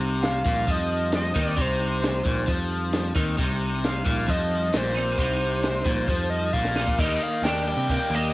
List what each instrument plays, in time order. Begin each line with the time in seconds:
Already playing: picked electric bass C2, overdriven electric guitar C3, clean electric guitar G3 C4 D#4
0.01 closed hi-hat
0.23 analog synth lead F5, snare, closed hi-hat, tambourine
0.45 picked electric bass A#1, overdriven electric guitar A#2, kick, closed hi-hat
0.68 picked electric bass F2, overdriven electric guitar F3, analog synth lead D#5, kick, closed hi-hat
0.91 closed hi-hat
1.12 analog synth lead D#5, snare, closed hi-hat, tambourine
1.35 picked electric bass D#2, overdriven electric guitar D#3, clean electric guitar G3 C4 D#4, kick, closed hi-hat
1.46 analog synth lead D5
1.56 picked electric bass C2, overdriven electric guitar C3, clean electric guitar G3 C4 D#4, kick, closed hi-hat
1.61 analog synth lead C5
1.80 closed hi-hat
2.03 snare, closed hi-hat, tambourine
2.24 picked electric bass A#1, overdriven electric guitar A#2, kick, closed hi-hat
2.47 picked electric bass F2, overdriven electric guitar F3, kick, closed hi-hat
2.72 closed hi-hat
2.93 snare, closed hi-hat, tambourine
3.15 picked electric bass D#2, overdriven electric guitar D#3, clean electric guitar G3 C4 D#4, kick, closed hi-hat
3.37 picked electric bass C2, overdriven electric guitar C3, clean electric guitar G3 C4 D#4, kick, closed hi-hat
3.61 closed hi-hat
3.84 analog synth lead F5, snare, closed hi-hat, tambourine
4.05 picked electric bass A#1, overdriven electric guitar A#2, kick, closed hi-hat
4.28 picked electric bass F2, overdriven electric guitar F3, analog synth lead D#5, kick, closed hi-hat
4.51 closed hi-hat
4.73 picked electric bass A#1, overdriven electric guitar A#2, analog synth lead C5, snare, closed hi-hat, tambourine
4.95 clean electric guitar G3 C4 D#4, analog synth lead C5, closed hi-hat
5.18 picked electric bass C2, overdriven electric guitar C3, clean electric guitar G3 C4, kick, closed hi-hat
5.23 clean electric guitar D#4
5.41 closed hi-hat
5.63 snare, closed hi-hat, tambourine
5.85 picked electric bass A#1, overdriven electric guitar A#2, kick, closed hi-hat
6.08 picked electric bass F2, overdriven electric guitar F3, kick, closed hi-hat
6.30 analog synth lead D#5, closed hi-hat
6.53 picked electric bass A#1, overdriven electric guitar A#2, analog synth lead F5, kick
6.65 snare
6.76 clean electric guitar G3 C4 D#4, snare
6.88 kick
6.98 picked electric bass D#2, overdriven electric guitar D#3, clean electric guitar A#3 D4 G4, analog synth lead D#5, kick, crash
7.22 clean electric guitar A#3 D4, analog synth lead F5, closed hi-hat
7.42 picked electric bass D#2, clean electric guitar A#3 D4, overdriven electric guitar D4, analog synth lead G5, snare, closed hi-hat, tambourine
7.47 clean electric guitar G4
7.67 clean electric guitar A#3 D4, overdriven electric guitar G4, closed hi-hat
7.77 picked electric bass C3
7.89 overdriven electric guitar A#3, clean electric guitar A#3 D4, analog synth lead G5, kick, closed hi-hat
8.10 picked electric bass D#2, clean electric guitar A#3, overdriven electric guitar G4, closed hi-hat
8.14 clean electric guitar D4 G4, analog synth lead D#5